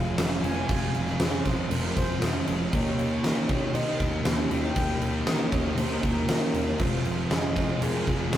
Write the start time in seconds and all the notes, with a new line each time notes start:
Already playing: F1 F2 C3 F3 G#3 C4 F4 G#4 F5
0.17 F1 F2 C3 F3 F4, snare, crash
0.42 F1 C3 F3 G#5, crash
0.68 F1 F2 C3 F3 G#3 C4 F4, kick, crash
0.94 F1, crash
1.07 snare
1.19 F2 C3 F3 G#4, snare, crash
1.44 F1 C3 F3 G#3 C4 F4 C5, kick, crash
1.70 F1 F2 C3 F3 A#4, crash
1.96 F1 G#4 C5, kick, crash
2.21 F2 C3 F3 F4, snare, crash
2.47 F1 C3 F3, crash
2.72 D#2 D#3 A#3 C#4 D#4 G4 C#5, kick, crash
2.98 D#2, crash
3.23 D#3 A#3 D#4 A#4, snare, crash
3.48 D#3 A#3 C#4 D#4 G4 C#5, kick, crash
3.73 D#3 A#3 D#4 C5 D#5, crash
3.99 D#2 A#4, kick, crash
4.24 D#2 D#3 A#3 D#4 G4, snare, crash
4.50 D#2 A#3 D#4 G5, crash
4.75 D#2 D#3 A#3 C#4 D#4 G4, kick, crash
5.01 D#2, crash
5.26 D#3 A#3 D#4 A#4, snare, crash
5.51 D#2 D#3 A#3 C#4 D#4 G4 C#5, kick, crash
5.76 D#2 D#3 A#3 D#4 C5, crash
6.03 D#2 A#4, kick, crash
6.28 D#3 A#3 D#4 G4, snare, crash
6.53 D#2 A#3 D#4, crash
6.79 F1 F2 C3 F3 G#3 C4 F4 C5, kick, crash
7.04 F1, crash
7.30 F2 C3 F3 G#4 D#5, snare, crash
7.54 C3 F3 G#3 C4 F4 C5, kick, crash
7.81 F2 C3 F3 G#4 A#4, crash
8.07 F1 G#4, kick, crash
8.32 F1 F2 C3 F3 F4, snare, crash